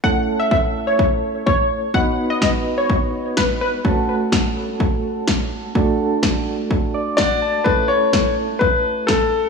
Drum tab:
SD |--------|--o---o-|--o---o-|--o---o-|
BD |o-o-o-o-|o-o-o-o-|o-o-o-o-|o-o-o-o-|

SD |--o---o-|
BD |o-o-o-o-|